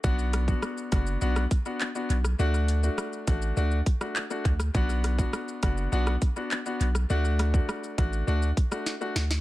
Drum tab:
HH |--x---x---x---x-|--x---x---x---x-|--x---x---x---x-|--x---x---x---x-|
SH |xxxxxxxxxxxxxxxx|xxxxxxxxxxxxxxxx|xxxxxxxxxxxxxxxx|xxxxxxxxxxxxxxxx|
CP |------------x---|------------x---|------------x---|----------------|
SD |--r-r-r--r-----r|----r------r---r|--r-r-r--r-----r|--r-r------ro-oo|
BD |o--o--o---o-----|------o---o---o-|o--o--o---o-----|---o--o---o-----|